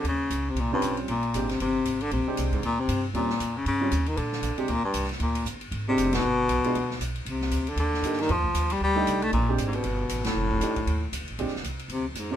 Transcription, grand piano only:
X:1
M:4/4
L:1/8
Q:"Swing" 1/4=233
K:Bbmix
V:1 name="Grand piano"
z4 z [G,C_DF]3 | z2 [A,CDG] z4 z | z [A,CDG]3 z4 | [G,C_DF] z4 [G,CDF] z2 |
z3 [A,CDG] z4 | z4 z [A,CDG]3 | z3 [A,=B,DF] z4 | z6 [B,DEG]2 |
z4 z [=A,DEG]3 | z [A,CDG]3 z4 | z2 [=A,DEG] z4 z | [A,CDFG] z6 [B,C_DFB] |]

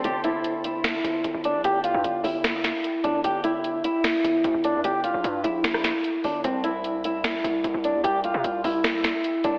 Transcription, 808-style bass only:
X:1
M:4/4
L:1/16
Q:1/4=150
K:Cmix
V:1 name="808-style bass" clef=bass
G,,,8- G,,,2 G,,,2 G,,, G,,,2 B,,, | G,,,3 G,, G,,,2 G,,,4- G,,, z3 G,,,2 | G,,,6 z4 G,,,2 D,, G,,,2 G,, | G,,,2 F,,, B,,, G,,2 B,,,4- B,,, z3 G,,,2 |
C,,8- C,,2 C,,2 C,, C,,2 E,, | C,,3 C, C,,2 C,,4- C,, z3 C,,2 |]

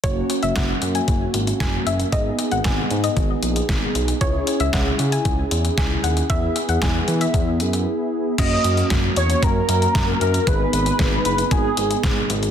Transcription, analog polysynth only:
X:1
M:4/4
L:1/8
Q:1/4=115
K:F#mix
V:1 name="Analog polysynth"
[A,CF]8 | [B,DG]8 | [CEG]8 | B,8 |
F8 | [B,DG]8 |]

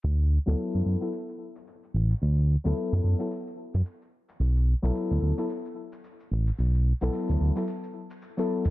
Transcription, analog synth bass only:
X:1
M:4/4
L:1/16
Q:"Swing 16ths" 1/4=110
K:D
V:1 name="Analog synth bass" clef=bass
D,,2 z D,, z F,, F,, z6 z A,,, z | D,,2 z D,, z F,, F,, z4 F,, z4 | B,,,2 z B,,, z D,, D,, z6 z A,,, z | B,,,2 z B,,, z D,, D,, z8 E,, |]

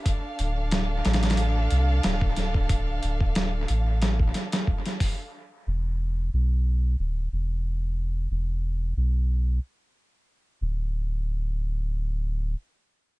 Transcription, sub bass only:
X:1
M:4/4
L:1/8
Q:"Swing 16ths" 1/4=91
K:Ddor
V:1 name="Sub bass" clef=bass
z D,,,2 A,,,2 C,, D,,,2- | D,,, D,,,2 A,,,2 z3 | z E,,,2 B,,,2 D,,, E,,,2- | E,,, E,,,2 B,,,2 z3 |
D,,,6 z2 |]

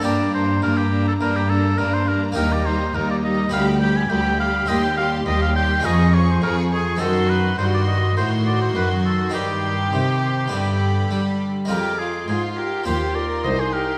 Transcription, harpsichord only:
X:1
M:4/4
L:1/8
Q:1/4=103
K:Gm
V:1 name="Harpsichord"
[B,DG]8 | [K:Cm] [B,EG]4 [=B,G]4 | [CG]4 [A,_DF]4 | [C^D]8 |
[CE]4 [=B,D]4 | [A,CF]4 [CG]4 |]
V:2 name="Harpsichord" clef=bass
G,,2 G,,2 G,,2 G,,2 | [K:Cm] E,,2 E,,2 D,,2 D,,2 | E,,2 E,,2 F,,2 F,,2 | ^F,,2 G,,2 =A,,2 F,,2 |
G,,2 C,2 G,,2 G,2 | F,,2 A,,2 E,,2 C,,2 |]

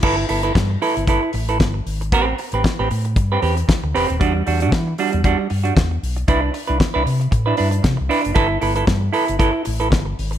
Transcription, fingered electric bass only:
X:1
M:4/4
L:1/16
Q:"Swing 16ths" 1/4=115
K:G
V:1 name="Fingered electric bass" clef=bass
G,,,2 G,,,2 G,,2 z G,,,2 z A,,,2 G,,,2 _A,,,2 | A,,,2 z A,,, z A,,, A,,2 G,,2 E,,2 z D,, E,,, _E,,, | E,,2 E,,2 E,2 z E,,2 z G,,2 E,,2 B,,,2 | C,,2 z C,, z C,, C,2 A,,2 G,,2 C, C,, z F,,, |
G,,,2 G,,,2 G,,2 z G,,,2 z A,,,2 G,,,2 _A,,,2 |]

